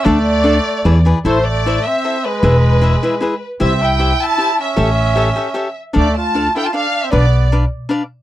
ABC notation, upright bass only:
X:1
M:3/4
L:1/8
Q:1/4=154
K:D
V:1 name="Upright bass" clef=bass
D,,4 E,,2 | [K:Am] A,,,4 z2 | E,,,4 z2 | C,,4 z2 |
A,,,4 z2 | D,,4 z2 | B,,,4 z2 |]